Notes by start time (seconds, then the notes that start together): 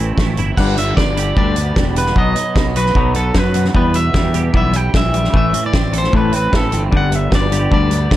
Already playing: A1 E3 A3 E4
0.00 A2 E3 C4
0.18 A1 A2 E3 A3, kick, snare
0.37 G1 A2 E3 E4, closed hi-hat
0.57 G1 G2 D3 G3 F#5, kick, crash
0.76 G2 D3 E5, closed hi-hat
0.97 G1 G2 D3 B3 D5, kick, snare
1.17 G2 D3 G4, closed hi-hat
1.36 D2 G2 D3 G3 D4 D5, kick
1.56 G2 D3 B3, closed hi-hat
1.76 E1 G2 D3 G3, kick, snare
1.96 G2 D3 B3 B4, closed hi-hat
2.06 snare
2.16 B1 B2 F#3 B3 D#5, kick
2.35 B2 F#3, closed hi-hat
2.55 B1 B2 F#3 B3, kick, snare
2.76 B2 F#3 F#4 B4, closed hi-hat
2.86 snare
2.95 B1 B2 F#3 B3 D#4, kick
3.15 B2 F#3 B3 A4, closed hi-hat
3.34 F#2 B2 F#3 B4, kick, snare
3.54 B2 F#3 B3, closed hi-hat
3.65 snare
3.74 E2 E3 G3 B3 B4, kick
3.93 B2 E3 G3 E5, closed hi-hat
4.14 E2 E3 G3, kick, snare
4.34 E3 G3 G4, closed hi-hat
4.53 B1 E3 G3 B3 E4 E5, kick
4.73 E3 G3 G5, closed hi-hat
4.94 A#1 E3 G3 E5, kick, snare
5.14 E3 G3, closed hi-hat
5.24 snare
5.32 A1 A2 E3 A3, kick
5.37 E5
5.53 A2 E3, closed hi-hat
5.66 D5
5.73 A1 A2 E3 C4, kick, snare
5.92 A2 E3 A4, closed hi-hat
5.98 C5
6.04 snare
6.12 A1 A2 E3 A3 E4, kick
6.17 B4
6.33 A2 E3 C4 B4, closed hi-hat
6.52 A1 A2 E3, kick, snare
6.56 A4
6.72 G1 A2 E3 C4, closed hi-hat
6.91 G1 G2 D3 G3 D4 B4, kick
6.97 F#5
7.12 G2 D3 E5, closed hi-hat
7.30 G1 G2 D3 B3, kick, snare
7.35 D5
7.51 G2 D3 G4, closed hi-hat
7.71 D2 G2 D3 G3 D4 D5, kick
7.90 G2 D3 B3, closed hi-hat
8.11 E1 G2 D3 G3, kick, snare